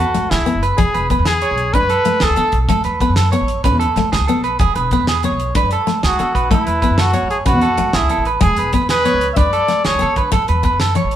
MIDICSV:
0, 0, Header, 1, 7, 480
1, 0, Start_track
1, 0, Key_signature, 3, "major"
1, 0, Tempo, 318134
1, 1177, Time_signature, 12, 3, 24, 8
1, 16837, End_track
2, 0, Start_track
2, 0, Title_t, "Clean electric guitar"
2, 0, Program_c, 0, 27
2, 0, Note_on_c, 0, 69, 74
2, 435, Note_off_c, 0, 69, 0
2, 471, Note_on_c, 0, 68, 78
2, 692, Note_off_c, 0, 68, 0
2, 946, Note_on_c, 0, 71, 75
2, 1169, Note_off_c, 0, 71, 0
2, 1189, Note_on_c, 0, 68, 90
2, 1411, Note_off_c, 0, 68, 0
2, 1424, Note_on_c, 0, 71, 68
2, 1649, Note_off_c, 0, 71, 0
2, 1669, Note_on_c, 0, 71, 75
2, 1892, Note_off_c, 0, 71, 0
2, 1908, Note_on_c, 0, 68, 78
2, 2131, Note_off_c, 0, 68, 0
2, 2144, Note_on_c, 0, 73, 81
2, 2598, Note_off_c, 0, 73, 0
2, 2637, Note_on_c, 0, 71, 80
2, 2856, Note_off_c, 0, 71, 0
2, 2866, Note_on_c, 0, 69, 79
2, 3319, Note_off_c, 0, 69, 0
2, 3342, Note_on_c, 0, 68, 81
2, 3569, Note_off_c, 0, 68, 0
2, 3579, Note_on_c, 0, 69, 82
2, 3808, Note_off_c, 0, 69, 0
2, 4058, Note_on_c, 0, 69, 86
2, 4287, Note_off_c, 0, 69, 0
2, 4295, Note_on_c, 0, 71, 61
2, 4526, Note_off_c, 0, 71, 0
2, 4546, Note_on_c, 0, 71, 82
2, 4771, Note_off_c, 0, 71, 0
2, 4780, Note_on_c, 0, 69, 84
2, 5002, Note_off_c, 0, 69, 0
2, 5008, Note_on_c, 0, 73, 79
2, 5470, Note_off_c, 0, 73, 0
2, 5492, Note_on_c, 0, 71, 88
2, 5720, Note_off_c, 0, 71, 0
2, 5726, Note_on_c, 0, 69, 84
2, 6190, Note_off_c, 0, 69, 0
2, 6219, Note_on_c, 0, 68, 81
2, 6446, Note_off_c, 0, 68, 0
2, 6452, Note_on_c, 0, 69, 74
2, 6685, Note_off_c, 0, 69, 0
2, 6697, Note_on_c, 0, 71, 74
2, 6928, Note_off_c, 0, 71, 0
2, 6938, Note_on_c, 0, 68, 90
2, 7168, Note_off_c, 0, 68, 0
2, 7177, Note_on_c, 0, 71, 69
2, 7408, Note_off_c, 0, 71, 0
2, 7432, Note_on_c, 0, 71, 77
2, 7656, Note_off_c, 0, 71, 0
2, 7671, Note_on_c, 0, 68, 79
2, 7895, Note_off_c, 0, 68, 0
2, 7923, Note_on_c, 0, 73, 76
2, 8369, Note_off_c, 0, 73, 0
2, 8393, Note_on_c, 0, 71, 86
2, 8616, Note_off_c, 0, 71, 0
2, 8640, Note_on_c, 0, 69, 77
2, 9087, Note_off_c, 0, 69, 0
2, 9113, Note_on_c, 0, 68, 81
2, 9336, Note_off_c, 0, 68, 0
2, 9346, Note_on_c, 0, 69, 66
2, 9572, Note_off_c, 0, 69, 0
2, 9581, Note_on_c, 0, 71, 69
2, 9809, Note_off_c, 0, 71, 0
2, 9824, Note_on_c, 0, 69, 87
2, 10051, Note_off_c, 0, 69, 0
2, 10065, Note_on_c, 0, 71, 61
2, 10271, Note_off_c, 0, 71, 0
2, 10289, Note_on_c, 0, 71, 77
2, 10523, Note_off_c, 0, 71, 0
2, 10538, Note_on_c, 0, 69, 78
2, 10767, Note_off_c, 0, 69, 0
2, 10773, Note_on_c, 0, 73, 76
2, 11232, Note_off_c, 0, 73, 0
2, 11262, Note_on_c, 0, 71, 88
2, 11489, Note_off_c, 0, 71, 0
2, 11501, Note_on_c, 0, 69, 77
2, 11956, Note_off_c, 0, 69, 0
2, 11979, Note_on_c, 0, 68, 85
2, 12207, Note_off_c, 0, 68, 0
2, 12231, Note_on_c, 0, 69, 70
2, 12453, Note_off_c, 0, 69, 0
2, 12470, Note_on_c, 0, 71, 70
2, 12693, Note_off_c, 0, 71, 0
2, 12704, Note_on_c, 0, 68, 85
2, 12929, Note_off_c, 0, 68, 0
2, 12960, Note_on_c, 0, 71, 66
2, 13171, Note_off_c, 0, 71, 0
2, 13189, Note_on_c, 0, 71, 84
2, 13412, Note_off_c, 0, 71, 0
2, 13425, Note_on_c, 0, 68, 81
2, 13649, Note_off_c, 0, 68, 0
2, 13662, Note_on_c, 0, 73, 81
2, 14115, Note_off_c, 0, 73, 0
2, 14144, Note_on_c, 0, 71, 82
2, 14368, Note_off_c, 0, 71, 0
2, 14381, Note_on_c, 0, 69, 84
2, 14834, Note_off_c, 0, 69, 0
2, 14860, Note_on_c, 0, 68, 81
2, 15085, Note_off_c, 0, 68, 0
2, 15114, Note_on_c, 0, 69, 77
2, 15332, Note_off_c, 0, 69, 0
2, 15349, Note_on_c, 0, 71, 79
2, 15570, Note_off_c, 0, 71, 0
2, 15585, Note_on_c, 0, 69, 91
2, 15807, Note_off_c, 0, 69, 0
2, 15823, Note_on_c, 0, 71, 68
2, 16046, Note_off_c, 0, 71, 0
2, 16066, Note_on_c, 0, 71, 81
2, 16287, Note_off_c, 0, 71, 0
2, 16308, Note_on_c, 0, 69, 81
2, 16528, Note_off_c, 0, 69, 0
2, 16540, Note_on_c, 0, 73, 70
2, 16837, Note_off_c, 0, 73, 0
2, 16837, End_track
3, 0, Start_track
3, 0, Title_t, "Trumpet"
3, 0, Program_c, 1, 56
3, 0, Note_on_c, 1, 66, 89
3, 449, Note_on_c, 1, 64, 94
3, 471, Note_off_c, 1, 66, 0
3, 933, Note_off_c, 1, 64, 0
3, 1166, Note_on_c, 1, 68, 91
3, 1618, Note_off_c, 1, 68, 0
3, 1907, Note_on_c, 1, 68, 103
3, 2617, Note_on_c, 1, 71, 112
3, 2639, Note_off_c, 1, 68, 0
3, 3373, Note_on_c, 1, 69, 97
3, 3396, Note_off_c, 1, 71, 0
3, 3897, Note_off_c, 1, 69, 0
3, 9145, Note_on_c, 1, 66, 84
3, 9794, Note_off_c, 1, 66, 0
3, 9848, Note_on_c, 1, 64, 90
3, 10561, Note_on_c, 1, 66, 86
3, 10583, Note_off_c, 1, 64, 0
3, 11011, Note_off_c, 1, 66, 0
3, 11020, Note_on_c, 1, 68, 80
3, 11128, Note_off_c, 1, 68, 0
3, 11271, Note_on_c, 1, 66, 93
3, 12000, Note_on_c, 1, 64, 91
3, 12023, Note_off_c, 1, 66, 0
3, 12469, Note_off_c, 1, 64, 0
3, 12716, Note_on_c, 1, 68, 98
3, 13154, Note_off_c, 1, 68, 0
3, 13428, Note_on_c, 1, 71, 107
3, 13994, Note_off_c, 1, 71, 0
3, 14080, Note_on_c, 1, 76, 77
3, 14137, Note_on_c, 1, 74, 112
3, 14160, Note_off_c, 1, 76, 0
3, 14884, Note_on_c, 1, 73, 96
3, 14907, Note_off_c, 1, 74, 0
3, 15408, Note_off_c, 1, 73, 0
3, 16837, End_track
4, 0, Start_track
4, 0, Title_t, "Steel-string acoustic guitar"
4, 0, Program_c, 2, 25
4, 217, Note_on_c, 2, 57, 74
4, 506, Note_off_c, 2, 57, 0
4, 696, Note_on_c, 2, 59, 72
4, 985, Note_off_c, 2, 59, 0
4, 1175, Note_on_c, 2, 52, 90
4, 1465, Note_off_c, 2, 52, 0
4, 1674, Note_on_c, 2, 59, 67
4, 1958, Note_off_c, 2, 59, 0
4, 2637, Note_on_c, 2, 62, 85
4, 2921, Note_off_c, 2, 62, 0
4, 3101, Note_on_c, 2, 57, 80
4, 3390, Note_off_c, 2, 57, 0
4, 3578, Note_on_c, 2, 59, 73
4, 3868, Note_off_c, 2, 59, 0
4, 4067, Note_on_c, 2, 57, 91
4, 4354, Note_off_c, 2, 57, 0
4, 4548, Note_on_c, 2, 59, 70
4, 4835, Note_off_c, 2, 59, 0
4, 5022, Note_on_c, 2, 59, 74
4, 5310, Note_off_c, 2, 59, 0
4, 5509, Note_on_c, 2, 61, 94
4, 5796, Note_off_c, 2, 61, 0
4, 5995, Note_on_c, 2, 57, 78
4, 6280, Note_off_c, 2, 57, 0
4, 6473, Note_on_c, 2, 59, 79
4, 6759, Note_off_c, 2, 59, 0
4, 7433, Note_on_c, 2, 59, 73
4, 7718, Note_off_c, 2, 59, 0
4, 7906, Note_on_c, 2, 59, 78
4, 8194, Note_off_c, 2, 59, 0
4, 8375, Note_on_c, 2, 62, 83
4, 8666, Note_off_c, 2, 62, 0
4, 8855, Note_on_c, 2, 57, 76
4, 9146, Note_off_c, 2, 57, 0
4, 9349, Note_on_c, 2, 59, 66
4, 9636, Note_off_c, 2, 59, 0
4, 9823, Note_on_c, 2, 57, 92
4, 10111, Note_off_c, 2, 57, 0
4, 10312, Note_on_c, 2, 59, 69
4, 10597, Note_off_c, 2, 59, 0
4, 10764, Note_on_c, 2, 59, 78
4, 11058, Note_off_c, 2, 59, 0
4, 11249, Note_on_c, 2, 61, 88
4, 11541, Note_off_c, 2, 61, 0
4, 11738, Note_on_c, 2, 57, 79
4, 12027, Note_off_c, 2, 57, 0
4, 12219, Note_on_c, 2, 59, 72
4, 12508, Note_off_c, 2, 59, 0
4, 12683, Note_on_c, 2, 56, 100
4, 12976, Note_off_c, 2, 56, 0
4, 13180, Note_on_c, 2, 59, 73
4, 13468, Note_off_c, 2, 59, 0
4, 13659, Note_on_c, 2, 59, 72
4, 13947, Note_off_c, 2, 59, 0
4, 14127, Note_on_c, 2, 62, 87
4, 14418, Note_off_c, 2, 62, 0
4, 14610, Note_on_c, 2, 57, 72
4, 14900, Note_off_c, 2, 57, 0
4, 15074, Note_on_c, 2, 59, 73
4, 15368, Note_off_c, 2, 59, 0
4, 16039, Note_on_c, 2, 59, 65
4, 16331, Note_off_c, 2, 59, 0
4, 16526, Note_on_c, 2, 52, 67
4, 16816, Note_off_c, 2, 52, 0
4, 16837, End_track
5, 0, Start_track
5, 0, Title_t, "Upright bass"
5, 0, Program_c, 3, 32
5, 227, Note_on_c, 3, 33, 83
5, 314, Note_off_c, 3, 33, 0
5, 466, Note_on_c, 3, 33, 95
5, 554, Note_off_c, 3, 33, 0
5, 585, Note_on_c, 3, 37, 75
5, 673, Note_off_c, 3, 37, 0
5, 827, Note_on_c, 3, 30, 79
5, 1097, Note_off_c, 3, 30, 0
5, 1187, Note_on_c, 3, 28, 93
5, 1274, Note_off_c, 3, 28, 0
5, 1435, Note_on_c, 3, 28, 87
5, 1703, Note_off_c, 3, 28, 0
5, 1797, Note_on_c, 3, 40, 89
5, 2156, Note_off_c, 3, 40, 0
5, 2278, Note_on_c, 3, 35, 88
5, 2545, Note_off_c, 3, 35, 0
5, 2626, Note_on_c, 3, 38, 97
5, 2715, Note_off_c, 3, 38, 0
5, 2751, Note_on_c, 3, 42, 89
5, 2930, Note_off_c, 3, 42, 0
5, 3350, Note_on_c, 3, 38, 98
5, 3438, Note_off_c, 3, 38, 0
5, 3466, Note_on_c, 3, 38, 76
5, 3555, Note_off_c, 3, 38, 0
5, 3587, Note_on_c, 3, 50, 83
5, 3676, Note_off_c, 3, 50, 0
5, 3821, Note_on_c, 3, 35, 86
5, 4004, Note_off_c, 3, 35, 0
5, 4058, Note_on_c, 3, 33, 94
5, 4151, Note_off_c, 3, 33, 0
5, 4296, Note_on_c, 3, 40, 90
5, 4573, Note_off_c, 3, 40, 0
5, 4666, Note_on_c, 3, 42, 79
5, 5030, Note_off_c, 3, 42, 0
5, 5141, Note_on_c, 3, 33, 81
5, 5416, Note_off_c, 3, 33, 0
5, 5497, Note_on_c, 3, 33, 102
5, 5619, Note_off_c, 3, 33, 0
5, 5619, Note_on_c, 3, 40, 81
5, 5803, Note_off_c, 3, 40, 0
5, 5973, Note_on_c, 3, 33, 95
5, 6068, Note_off_c, 3, 33, 0
5, 6224, Note_on_c, 3, 33, 107
5, 6315, Note_off_c, 3, 33, 0
5, 6337, Note_on_c, 3, 37, 70
5, 6431, Note_off_c, 3, 37, 0
5, 6583, Note_on_c, 3, 35, 77
5, 6857, Note_off_c, 3, 35, 0
5, 6937, Note_on_c, 3, 28, 86
5, 7031, Note_off_c, 3, 28, 0
5, 7177, Note_on_c, 3, 28, 97
5, 7454, Note_off_c, 3, 28, 0
5, 7540, Note_on_c, 3, 40, 93
5, 7907, Note_off_c, 3, 40, 0
5, 8025, Note_on_c, 3, 35, 85
5, 8299, Note_off_c, 3, 35, 0
5, 8384, Note_on_c, 3, 38, 96
5, 8475, Note_off_c, 3, 38, 0
5, 8496, Note_on_c, 3, 42, 82
5, 8681, Note_off_c, 3, 42, 0
5, 9106, Note_on_c, 3, 38, 92
5, 9196, Note_off_c, 3, 38, 0
5, 9231, Note_on_c, 3, 38, 78
5, 9319, Note_off_c, 3, 38, 0
5, 9350, Note_on_c, 3, 50, 85
5, 9439, Note_off_c, 3, 50, 0
5, 9587, Note_on_c, 3, 34, 76
5, 9768, Note_off_c, 3, 34, 0
5, 9826, Note_on_c, 3, 33, 92
5, 9916, Note_off_c, 3, 33, 0
5, 10072, Note_on_c, 3, 40, 81
5, 10343, Note_off_c, 3, 40, 0
5, 10417, Note_on_c, 3, 42, 76
5, 10785, Note_off_c, 3, 42, 0
5, 10899, Note_on_c, 3, 33, 80
5, 11174, Note_off_c, 3, 33, 0
5, 11259, Note_on_c, 3, 33, 108
5, 11373, Note_off_c, 3, 33, 0
5, 11373, Note_on_c, 3, 40, 80
5, 11559, Note_off_c, 3, 40, 0
5, 11734, Note_on_c, 3, 33, 87
5, 11828, Note_off_c, 3, 33, 0
5, 11971, Note_on_c, 3, 33, 104
5, 12066, Note_off_c, 3, 33, 0
5, 12098, Note_on_c, 3, 37, 75
5, 12190, Note_off_c, 3, 37, 0
5, 12336, Note_on_c, 3, 33, 85
5, 12611, Note_off_c, 3, 33, 0
5, 12696, Note_on_c, 3, 28, 97
5, 12789, Note_off_c, 3, 28, 0
5, 12937, Note_on_c, 3, 28, 90
5, 13212, Note_off_c, 3, 28, 0
5, 13299, Note_on_c, 3, 40, 91
5, 13664, Note_off_c, 3, 40, 0
5, 13788, Note_on_c, 3, 37, 92
5, 14058, Note_off_c, 3, 37, 0
5, 14137, Note_on_c, 3, 38, 102
5, 14228, Note_off_c, 3, 38, 0
5, 14270, Note_on_c, 3, 42, 80
5, 14448, Note_off_c, 3, 42, 0
5, 14873, Note_on_c, 3, 38, 96
5, 14958, Note_off_c, 3, 38, 0
5, 15003, Note_on_c, 3, 38, 80
5, 15084, Note_off_c, 3, 38, 0
5, 15124, Note_on_c, 3, 50, 78
5, 15204, Note_off_c, 3, 50, 0
5, 15338, Note_on_c, 3, 50, 86
5, 15519, Note_off_c, 3, 50, 0
5, 15586, Note_on_c, 3, 33, 103
5, 15673, Note_off_c, 3, 33, 0
5, 15829, Note_on_c, 3, 40, 90
5, 16097, Note_off_c, 3, 40, 0
5, 16192, Note_on_c, 3, 42, 81
5, 16549, Note_off_c, 3, 42, 0
5, 16660, Note_on_c, 3, 33, 75
5, 16837, Note_off_c, 3, 33, 0
5, 16837, End_track
6, 0, Start_track
6, 0, Title_t, "Muted steel-string acoustic guitar strokes"
6, 6952, Note_on_c, 9, 29, 89
6, 7103, Note_off_c, 9, 29, 0
6, 15565, Note_on_c, 9, 29, 91
6, 15716, Note_off_c, 9, 29, 0
6, 16837, End_track
7, 0, Start_track
7, 0, Title_t, "Drums"
7, 224, Note_on_c, 9, 42, 55
7, 375, Note_off_c, 9, 42, 0
7, 469, Note_on_c, 9, 38, 84
7, 469, Note_on_c, 9, 42, 63
7, 620, Note_off_c, 9, 38, 0
7, 620, Note_off_c, 9, 42, 0
7, 711, Note_on_c, 9, 42, 49
7, 862, Note_off_c, 9, 42, 0
7, 947, Note_on_c, 9, 42, 50
7, 1098, Note_off_c, 9, 42, 0
7, 1182, Note_on_c, 9, 42, 73
7, 1184, Note_on_c, 9, 36, 92
7, 1333, Note_off_c, 9, 42, 0
7, 1335, Note_off_c, 9, 36, 0
7, 1426, Note_on_c, 9, 42, 47
7, 1577, Note_off_c, 9, 42, 0
7, 1660, Note_on_c, 9, 42, 45
7, 1662, Note_on_c, 9, 36, 65
7, 1811, Note_off_c, 9, 42, 0
7, 1813, Note_off_c, 9, 36, 0
7, 1893, Note_on_c, 9, 38, 81
7, 1893, Note_on_c, 9, 42, 62
7, 2044, Note_off_c, 9, 38, 0
7, 2044, Note_off_c, 9, 42, 0
7, 2135, Note_on_c, 9, 42, 47
7, 2286, Note_off_c, 9, 42, 0
7, 2378, Note_on_c, 9, 42, 47
7, 2529, Note_off_c, 9, 42, 0
7, 2618, Note_on_c, 9, 42, 63
7, 2621, Note_on_c, 9, 36, 89
7, 2769, Note_off_c, 9, 42, 0
7, 2772, Note_off_c, 9, 36, 0
7, 2859, Note_on_c, 9, 42, 48
7, 3010, Note_off_c, 9, 42, 0
7, 3092, Note_on_c, 9, 42, 52
7, 3243, Note_off_c, 9, 42, 0
7, 3321, Note_on_c, 9, 38, 89
7, 3321, Note_on_c, 9, 42, 60
7, 3472, Note_off_c, 9, 38, 0
7, 3472, Note_off_c, 9, 42, 0
7, 3563, Note_on_c, 9, 42, 50
7, 3713, Note_off_c, 9, 42, 0
7, 3803, Note_on_c, 9, 42, 52
7, 3812, Note_on_c, 9, 36, 66
7, 3954, Note_off_c, 9, 42, 0
7, 3963, Note_off_c, 9, 36, 0
7, 4053, Note_on_c, 9, 36, 94
7, 4053, Note_on_c, 9, 42, 74
7, 4204, Note_off_c, 9, 36, 0
7, 4204, Note_off_c, 9, 42, 0
7, 4283, Note_on_c, 9, 42, 61
7, 4434, Note_off_c, 9, 42, 0
7, 4533, Note_on_c, 9, 36, 64
7, 4535, Note_on_c, 9, 42, 52
7, 4684, Note_off_c, 9, 36, 0
7, 4686, Note_off_c, 9, 42, 0
7, 4768, Note_on_c, 9, 38, 90
7, 4768, Note_on_c, 9, 42, 66
7, 4918, Note_off_c, 9, 38, 0
7, 4918, Note_off_c, 9, 42, 0
7, 5014, Note_on_c, 9, 42, 53
7, 5165, Note_off_c, 9, 42, 0
7, 5253, Note_on_c, 9, 42, 49
7, 5403, Note_off_c, 9, 42, 0
7, 5491, Note_on_c, 9, 42, 71
7, 5493, Note_on_c, 9, 36, 81
7, 5642, Note_off_c, 9, 42, 0
7, 5644, Note_off_c, 9, 36, 0
7, 5744, Note_on_c, 9, 42, 50
7, 5894, Note_off_c, 9, 42, 0
7, 5977, Note_on_c, 9, 38, 26
7, 5977, Note_on_c, 9, 42, 50
7, 6128, Note_off_c, 9, 38, 0
7, 6128, Note_off_c, 9, 42, 0
7, 6227, Note_on_c, 9, 38, 84
7, 6227, Note_on_c, 9, 42, 60
7, 6378, Note_off_c, 9, 38, 0
7, 6378, Note_off_c, 9, 42, 0
7, 6462, Note_on_c, 9, 42, 48
7, 6613, Note_off_c, 9, 42, 0
7, 6695, Note_on_c, 9, 42, 44
7, 6845, Note_off_c, 9, 42, 0
7, 6926, Note_on_c, 9, 42, 65
7, 6934, Note_on_c, 9, 36, 96
7, 7076, Note_off_c, 9, 42, 0
7, 7085, Note_off_c, 9, 36, 0
7, 7174, Note_on_c, 9, 42, 55
7, 7325, Note_off_c, 9, 42, 0
7, 7409, Note_on_c, 9, 42, 52
7, 7415, Note_on_c, 9, 36, 60
7, 7560, Note_off_c, 9, 42, 0
7, 7566, Note_off_c, 9, 36, 0
7, 7655, Note_on_c, 9, 38, 82
7, 7655, Note_on_c, 9, 42, 65
7, 7806, Note_off_c, 9, 38, 0
7, 7806, Note_off_c, 9, 42, 0
7, 7891, Note_on_c, 9, 42, 51
7, 8042, Note_off_c, 9, 42, 0
7, 8140, Note_on_c, 9, 42, 51
7, 8291, Note_off_c, 9, 42, 0
7, 8373, Note_on_c, 9, 42, 71
7, 8378, Note_on_c, 9, 36, 96
7, 8524, Note_off_c, 9, 42, 0
7, 8529, Note_off_c, 9, 36, 0
7, 8610, Note_on_c, 9, 42, 52
7, 8761, Note_off_c, 9, 42, 0
7, 8870, Note_on_c, 9, 38, 27
7, 8870, Note_on_c, 9, 42, 54
7, 9021, Note_off_c, 9, 38, 0
7, 9021, Note_off_c, 9, 42, 0
7, 9101, Note_on_c, 9, 38, 75
7, 9101, Note_on_c, 9, 42, 66
7, 9252, Note_off_c, 9, 38, 0
7, 9252, Note_off_c, 9, 42, 0
7, 9338, Note_on_c, 9, 42, 48
7, 9489, Note_off_c, 9, 42, 0
7, 9580, Note_on_c, 9, 36, 63
7, 9589, Note_on_c, 9, 42, 44
7, 9731, Note_off_c, 9, 36, 0
7, 9739, Note_off_c, 9, 42, 0
7, 9818, Note_on_c, 9, 36, 90
7, 9825, Note_on_c, 9, 42, 71
7, 9969, Note_off_c, 9, 36, 0
7, 9976, Note_off_c, 9, 42, 0
7, 10058, Note_on_c, 9, 42, 55
7, 10209, Note_off_c, 9, 42, 0
7, 10293, Note_on_c, 9, 42, 49
7, 10295, Note_on_c, 9, 36, 63
7, 10444, Note_off_c, 9, 42, 0
7, 10446, Note_off_c, 9, 36, 0
7, 10528, Note_on_c, 9, 38, 91
7, 10528, Note_on_c, 9, 42, 61
7, 10679, Note_off_c, 9, 38, 0
7, 10679, Note_off_c, 9, 42, 0
7, 10773, Note_on_c, 9, 42, 47
7, 10924, Note_off_c, 9, 42, 0
7, 11021, Note_on_c, 9, 42, 45
7, 11172, Note_off_c, 9, 42, 0
7, 11253, Note_on_c, 9, 42, 69
7, 11255, Note_on_c, 9, 36, 86
7, 11404, Note_off_c, 9, 42, 0
7, 11405, Note_off_c, 9, 36, 0
7, 11488, Note_on_c, 9, 42, 49
7, 11639, Note_off_c, 9, 42, 0
7, 11731, Note_on_c, 9, 42, 47
7, 11882, Note_off_c, 9, 42, 0
7, 11970, Note_on_c, 9, 38, 83
7, 11970, Note_on_c, 9, 42, 63
7, 12121, Note_off_c, 9, 38, 0
7, 12121, Note_off_c, 9, 42, 0
7, 12212, Note_on_c, 9, 42, 51
7, 12363, Note_off_c, 9, 42, 0
7, 12452, Note_on_c, 9, 42, 48
7, 12603, Note_off_c, 9, 42, 0
7, 12686, Note_on_c, 9, 42, 76
7, 12693, Note_on_c, 9, 36, 93
7, 12837, Note_off_c, 9, 42, 0
7, 12844, Note_off_c, 9, 36, 0
7, 12922, Note_on_c, 9, 42, 57
7, 13073, Note_off_c, 9, 42, 0
7, 13166, Note_on_c, 9, 42, 52
7, 13174, Note_on_c, 9, 36, 67
7, 13317, Note_off_c, 9, 42, 0
7, 13325, Note_off_c, 9, 36, 0
7, 13414, Note_on_c, 9, 38, 78
7, 13414, Note_on_c, 9, 42, 69
7, 13564, Note_off_c, 9, 38, 0
7, 13564, Note_off_c, 9, 42, 0
7, 13663, Note_on_c, 9, 42, 53
7, 13814, Note_off_c, 9, 42, 0
7, 13897, Note_on_c, 9, 42, 47
7, 14048, Note_off_c, 9, 42, 0
7, 14130, Note_on_c, 9, 42, 69
7, 14138, Note_on_c, 9, 36, 91
7, 14281, Note_off_c, 9, 42, 0
7, 14289, Note_off_c, 9, 36, 0
7, 14376, Note_on_c, 9, 42, 44
7, 14527, Note_off_c, 9, 42, 0
7, 14620, Note_on_c, 9, 38, 28
7, 14620, Note_on_c, 9, 42, 48
7, 14771, Note_off_c, 9, 38, 0
7, 14771, Note_off_c, 9, 42, 0
7, 14856, Note_on_c, 9, 38, 82
7, 14856, Note_on_c, 9, 42, 53
7, 15007, Note_off_c, 9, 38, 0
7, 15007, Note_off_c, 9, 42, 0
7, 15099, Note_on_c, 9, 42, 49
7, 15250, Note_off_c, 9, 42, 0
7, 15332, Note_on_c, 9, 42, 45
7, 15335, Note_on_c, 9, 36, 60
7, 15483, Note_off_c, 9, 42, 0
7, 15486, Note_off_c, 9, 36, 0
7, 15577, Note_on_c, 9, 36, 87
7, 15581, Note_on_c, 9, 42, 66
7, 15728, Note_off_c, 9, 36, 0
7, 15732, Note_off_c, 9, 42, 0
7, 15813, Note_on_c, 9, 42, 53
7, 15964, Note_off_c, 9, 42, 0
7, 16042, Note_on_c, 9, 42, 47
7, 16051, Note_on_c, 9, 36, 66
7, 16193, Note_off_c, 9, 42, 0
7, 16202, Note_off_c, 9, 36, 0
7, 16290, Note_on_c, 9, 38, 84
7, 16290, Note_on_c, 9, 42, 71
7, 16441, Note_off_c, 9, 38, 0
7, 16441, Note_off_c, 9, 42, 0
7, 16522, Note_on_c, 9, 42, 51
7, 16673, Note_off_c, 9, 42, 0
7, 16766, Note_on_c, 9, 42, 51
7, 16837, Note_off_c, 9, 42, 0
7, 16837, End_track
0, 0, End_of_file